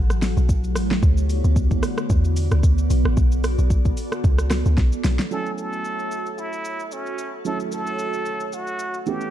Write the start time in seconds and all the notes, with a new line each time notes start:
Already playing: A1 F#3 F#4 A4 F#5
0.10 cross-stick, shaker
0.22 snare, open hi-hat, shaker
0.37 B1, shaker
0.49 kick, shaker
0.64 shaker
0.75 A1, cross-stick, open hi-hat, shaker
0.91 snare
1.03 D2 D3 B3 F#4 D5, kick, shaker
1.17 shaker
1.29 open hi-hat, shaker
1.44 D2, shaker
1.56 kick, shaker
1.71 kick, shaker
1.83 cross-stick, open hi-hat, shaker
1.98 cross-stick, shaker
2.10 E2, kick, shaker
2.24 shaker
2.36 open hi-hat, shaker
2.51 D2, cross-stick, shaker
2.63 D2, kick, shaker
2.78 shaker
2.90 B1 A4, open hi-hat, shaker
3.05 A1, cross-stick
3.17 B1, kick, shaker
3.32 shaker
3.44 cross-stick, open hi-hat, shaker
3.58 B1, shaker
3.70 kick, shaker
3.85 kick, shaker
3.97 open hi-hat, shaker
4.12 cross-stick, shaker
4.24 C#2, kick, shaker
4.38 cross-stick, shaker
4.51 cross-stick, snare, open hi-hat, shaker
4.66 D2, shaker
4.77 B1, kick, snare, shaker
4.92 shaker
5.04 B1, snare, open hi-hat, shaker
5.19 snare, shaker
5.31 F#3 A3 C#4 E4 F#4 A4 C#5 E5 G#5, shaker
5.46 shaker
5.58 A4, shaker
5.73 shaker
5.85 shaker
5.99 shaker
6.11 shaker
6.26 shaker
6.38 E4, shaker
6.53 shaker
6.65 shaker
6.80 shaker
6.91 C#4, shaker
7.06 shaker
7.18 shaker
7.45 F#3 A3 C#4 E4 A4, shaker
7.60 shaker
7.72 A4, shaker
7.87 shaker
7.99 shaker
8.13 shaker
8.26 shaker
8.40 shaker
8.53 F#4, shaker
8.67 shaker
8.79 shaker
8.94 shaker
9.06 E3 A3 B3 C#4 G4 A5, shaker
9.21 shaker